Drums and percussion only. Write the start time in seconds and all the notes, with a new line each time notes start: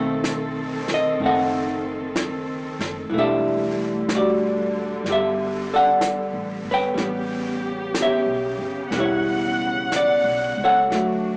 0.24 brush sweep, snare, hi-hat pedal
0.88 snare
1.20 brush sweep
2.16 brush sweep, snare, hi-hat pedal
2.80 snare
3.13 brush sweep
4.09 brush sweep, snare, hi-hat pedal
5.06 brush sweep, snare
6.01 brush sweep, snare, hi-hat pedal
6.97 brush sweep, snare
7.94 brush sweep, snare, hi-hat pedal
8.92 brush sweep, snare
9.92 brush sweep, snare, hi-hat pedal
10.92 brush sweep, snare